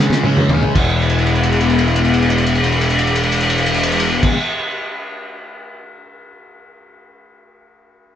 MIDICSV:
0, 0, Header, 1, 5, 480
1, 0, Start_track
1, 0, Key_signature, 4, "major"
1, 0, Tempo, 514139
1, 701, Time_signature, 7, 3, 24, 8
1, 7613, End_track
2, 0, Start_track
2, 0, Title_t, "String machine"
2, 0, Program_c, 0, 50
2, 0, Note_on_c, 0, 56, 71
2, 0, Note_on_c, 0, 64, 69
2, 0, Note_on_c, 0, 73, 67
2, 0, Note_on_c, 0, 76, 82
2, 655, Note_off_c, 0, 76, 0
2, 659, Note_off_c, 0, 56, 0
2, 673, Note_off_c, 0, 64, 0
2, 679, Note_off_c, 0, 73, 0
2, 704, Note_on_c, 0, 71, 68
2, 709, Note_on_c, 0, 76, 84
2, 711, Note_on_c, 0, 64, 70
2, 713, Note_on_c, 0, 56, 77
2, 4004, Note_off_c, 0, 71, 0
2, 4006, Note_off_c, 0, 76, 0
2, 4007, Note_off_c, 0, 64, 0
2, 4008, Note_off_c, 0, 56, 0
2, 7613, End_track
3, 0, Start_track
3, 0, Title_t, "Distorted electric guitar"
3, 0, Program_c, 1, 30
3, 0, Note_on_c, 1, 49, 61
3, 0, Note_on_c, 1, 56, 69
3, 229, Note_on_c, 1, 61, 64
3, 461, Note_off_c, 1, 49, 0
3, 472, Note_on_c, 1, 49, 67
3, 692, Note_on_c, 1, 40, 97
3, 706, Note_off_c, 1, 56, 0
3, 706, Note_off_c, 1, 61, 0
3, 707, Note_off_c, 1, 49, 0
3, 715, Note_on_c, 1, 47, 93
3, 730, Note_on_c, 1, 52, 99
3, 4035, Note_off_c, 1, 40, 0
3, 4047, Note_off_c, 1, 47, 0
3, 4054, Note_off_c, 1, 52, 0
3, 7613, End_track
4, 0, Start_track
4, 0, Title_t, "Picked electric bass"
4, 0, Program_c, 2, 34
4, 92, Note_on_c, 2, 49, 83
4, 411, Note_off_c, 2, 49, 0
4, 455, Note_on_c, 2, 39, 81
4, 563, Note_off_c, 2, 39, 0
4, 701, Note_on_c, 2, 28, 89
4, 4002, Note_off_c, 2, 28, 0
4, 7613, End_track
5, 0, Start_track
5, 0, Title_t, "Drums"
5, 110, Note_on_c, 9, 38, 57
5, 204, Note_off_c, 9, 38, 0
5, 220, Note_on_c, 9, 48, 74
5, 314, Note_off_c, 9, 48, 0
5, 345, Note_on_c, 9, 47, 71
5, 438, Note_off_c, 9, 47, 0
5, 469, Note_on_c, 9, 45, 91
5, 562, Note_off_c, 9, 45, 0
5, 586, Note_on_c, 9, 43, 87
5, 679, Note_off_c, 9, 43, 0
5, 705, Note_on_c, 9, 36, 94
5, 705, Note_on_c, 9, 49, 86
5, 798, Note_off_c, 9, 49, 0
5, 799, Note_off_c, 9, 36, 0
5, 947, Note_on_c, 9, 57, 43
5, 1024, Note_on_c, 9, 51, 46
5, 1041, Note_off_c, 9, 57, 0
5, 1104, Note_on_c, 9, 57, 49
5, 1117, Note_off_c, 9, 51, 0
5, 1182, Note_on_c, 9, 51, 50
5, 1198, Note_off_c, 9, 57, 0
5, 1262, Note_on_c, 9, 57, 51
5, 1275, Note_off_c, 9, 51, 0
5, 1339, Note_on_c, 9, 51, 51
5, 1355, Note_off_c, 9, 57, 0
5, 1422, Note_on_c, 9, 57, 54
5, 1432, Note_off_c, 9, 51, 0
5, 1499, Note_on_c, 9, 51, 55
5, 1516, Note_off_c, 9, 57, 0
5, 1583, Note_on_c, 9, 57, 52
5, 1593, Note_off_c, 9, 51, 0
5, 1667, Note_on_c, 9, 51, 56
5, 1676, Note_off_c, 9, 57, 0
5, 1752, Note_on_c, 9, 57, 58
5, 1760, Note_off_c, 9, 51, 0
5, 1828, Note_on_c, 9, 51, 60
5, 1845, Note_off_c, 9, 57, 0
5, 1910, Note_on_c, 9, 57, 63
5, 1921, Note_off_c, 9, 51, 0
5, 1994, Note_on_c, 9, 51, 60
5, 2004, Note_off_c, 9, 57, 0
5, 2074, Note_on_c, 9, 57, 62
5, 2087, Note_off_c, 9, 51, 0
5, 2147, Note_on_c, 9, 51, 69
5, 2167, Note_off_c, 9, 57, 0
5, 2222, Note_on_c, 9, 57, 67
5, 2240, Note_off_c, 9, 51, 0
5, 2300, Note_on_c, 9, 51, 69
5, 2315, Note_off_c, 9, 57, 0
5, 2382, Note_on_c, 9, 57, 72
5, 2394, Note_off_c, 9, 51, 0
5, 2461, Note_on_c, 9, 51, 62
5, 2475, Note_off_c, 9, 57, 0
5, 2541, Note_on_c, 9, 57, 65
5, 2554, Note_off_c, 9, 51, 0
5, 2625, Note_on_c, 9, 51, 70
5, 2634, Note_off_c, 9, 57, 0
5, 2709, Note_on_c, 9, 57, 73
5, 2718, Note_off_c, 9, 51, 0
5, 2789, Note_on_c, 9, 51, 74
5, 2802, Note_off_c, 9, 57, 0
5, 2866, Note_on_c, 9, 57, 71
5, 2883, Note_off_c, 9, 51, 0
5, 2946, Note_on_c, 9, 51, 79
5, 2959, Note_off_c, 9, 57, 0
5, 3019, Note_on_c, 9, 57, 76
5, 3040, Note_off_c, 9, 51, 0
5, 3099, Note_on_c, 9, 51, 82
5, 3112, Note_off_c, 9, 57, 0
5, 3179, Note_on_c, 9, 57, 85
5, 3192, Note_off_c, 9, 51, 0
5, 3265, Note_on_c, 9, 51, 75
5, 3272, Note_off_c, 9, 57, 0
5, 3339, Note_on_c, 9, 57, 82
5, 3358, Note_off_c, 9, 51, 0
5, 3418, Note_on_c, 9, 51, 81
5, 3432, Note_off_c, 9, 57, 0
5, 3494, Note_on_c, 9, 57, 84
5, 3512, Note_off_c, 9, 51, 0
5, 3579, Note_on_c, 9, 51, 89
5, 3587, Note_off_c, 9, 57, 0
5, 3656, Note_on_c, 9, 57, 91
5, 3672, Note_off_c, 9, 51, 0
5, 3732, Note_on_c, 9, 51, 95
5, 3750, Note_off_c, 9, 57, 0
5, 3825, Note_off_c, 9, 51, 0
5, 3947, Note_on_c, 9, 49, 98
5, 3948, Note_on_c, 9, 36, 104
5, 4041, Note_off_c, 9, 49, 0
5, 4042, Note_off_c, 9, 36, 0
5, 7613, End_track
0, 0, End_of_file